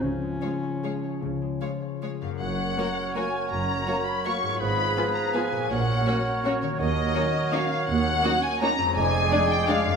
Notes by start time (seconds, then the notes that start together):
Already playing: G#3
0.02 C#2 C#3 F3 C#4
0.22 G#3
0.42 G#3 F4 C#5 F5
0.63 C#5
0.84 G#3 G#4 C#5 F5
1.04 C#5
1.22 C#2 C#3
1.42 G#3
1.61 G#3 F4 C#5 F5
1.82 C#5
2.02 G#3 G#4 C#5 F5
2.22 F#2 C#5 F5
2.26 A#3
2.31 F#4
2.35 C#5
2.40 F#1 F#2 F#3 A#4 C#5 F#5
2.77 F#3 A#3 F#4 A#4 C#5
3.15 F#3 A#3 F#4 A#4 C#5 G#5
3.51 F#1 F#2 A#5
3.88 F#3 A#3 F#4 A#4 C#5
4.06 B5
4.24 F#3 A#3 F#4 A#4 C#5 C#6
4.42 G#2
4.47 B3
4.52 F4
4.56 B4
4.60 G#1 G#2 F3 G#4 B4 B5
4.97 F3 B3 F4 G#4 B4
5.15 A#5
5.34 F3 B3 F4 G#4 B4 G#5
5.52 A#2
5.56 A#3
5.61 F#4
5.65 C#5
5.70 A#1 A#2 F#3 A#4 C#5 F#5
6.06 F#3 A#3 C#4 F#4 C#5
6.44 F#3 A#3 C#4 F#4 C#5
6.62 D#3 C#5
6.66 A#3
6.70 F#4
6.75 C#5
6.79 D#2 F#3 A#4 C#5 D#5
7.15 F#3 A#3 C#4 D#4 F#4 C#5
7.52 F#3 A#3 C#4 D#4 F#4 C#5 F5
7.88 D#2 F#5
8.24 F#3 A#3 C#4 D#4 F#4 C#5
8.42 G#5
8.61 F#3 A#3 C#4 D#4 F#4 C#5 A#5
8.78 F2
8.83 G#3
8.87 G#4
8.92 D5 G#5
8.96 F1 F2 G#3 G#4 D5 G#5
9.31 G#3 D4 G#4 D5
9.51 G5
9.69 G#3 D4 G#4 D5 F5
9.86 F#2
9.90 A#3